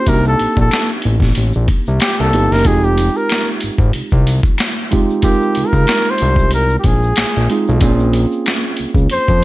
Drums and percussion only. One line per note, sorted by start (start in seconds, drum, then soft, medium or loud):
0.06 kick medium
0.06 closed hi-hat medium
0.06 shaker medium
0.25 shaker soft
0.39 closed hi-hat medium
0.57 kick medium
0.57 shaker soft
0.71 finger snap medium
0.71 snare loud
0.71 closed hi-hat medium
0.71 shaker medium
0.88 shaker soft
1.02 closed hi-hat medium
1.20 kick medium
1.20 snare soft
1.20 shaker soft
1.35 closed hi-hat medium
1.35 shaker medium
1.53 shaker soft
1.68 kick medium
1.68 closed hi-hat medium
1.86 shaker soft
2.00 finger snap medium
2.00 snare loud
2.00 closed hi-hat medium
2.00 shaker medium
2.19 shaker soft
2.33 closed hi-hat medium
2.33 shaker soft
2.52 snare soft
2.52 shaker soft
2.64 kick loud
2.64 closed hi-hat medium
2.64 shaker medium
2.83 shaker soft
2.98 closed hi-hat medium
3.15 shaker soft
3.30 finger snap medium
3.30 snare loud
3.30 closed hi-hat medium
3.30 shaker medium
3.46 shaker soft
3.61 closed hi-hat medium
3.78 kick medium
3.78 shaker soft
3.93 closed hi-hat medium
3.93 shaker medium
4.11 kick medium
4.11 shaker medium
4.27 closed hi-hat medium
4.43 kick medium
4.43 shaker soft
4.58 finger snap medium
4.58 snare loud
4.58 closed hi-hat medium
4.58 shaker medium
4.77 shaker soft
4.91 kick medium
4.91 closed hi-hat medium
4.91 shaker soft
5.10 shaker soft
5.22 kick loud
5.22 closed hi-hat medium
5.22 shaker medium
5.42 shaker soft
5.55 closed hi-hat medium
5.73 kick medium
5.73 shaker soft
5.87 finger snap medium
5.87 snare loud
5.87 closed hi-hat medium
5.87 shaker medium
6.05 shaker soft
6.18 closed hi-hat medium
6.36 kick medium
6.36 shaker soft
6.51 closed hi-hat medium
6.51 shaker medium
6.70 shaker medium
6.84 kick medium
6.84 closed hi-hat medium
7.03 shaker soft
7.16 finger snap medium
7.16 snare loud
7.16 closed hi-hat medium
7.16 shaker medium
7.35 shaker soft
7.50 closed hi-hat medium
7.50 shaker soft
7.68 shaker soft
7.81 kick loud
7.81 closed hi-hat medium
7.81 shaker medium
8.00 shaker soft
8.13 closed hi-hat medium
8.32 shaker soft
8.46 finger snap medium
8.46 snare loud
8.46 closed hi-hat medium
8.46 shaker medium
8.63 shaker soft
8.77 closed hi-hat medium
8.95 kick medium
8.95 shaker soft
9.10 closed hi-hat medium
9.10 shaker medium
9.27 kick medium
9.27 shaker medium